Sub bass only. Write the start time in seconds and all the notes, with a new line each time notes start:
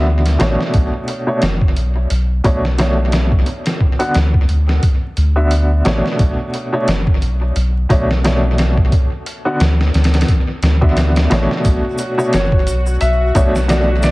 Already playing: D2
0.40 A1
0.74 B1
1.42 F#1
1.76 B1
2.11 B1
2.44 B1
4.15 D2
4.49 D2
5.17 D2
5.86 A1
6.19 B1
6.88 F#1
7.22 B1
7.56 B1
7.90 B1
9.60 D2
9.94 D2
10.62 D2
11.31 A1
11.65 B1
12.34 F#1
12.67 B1
13.01 B1
13.35 B1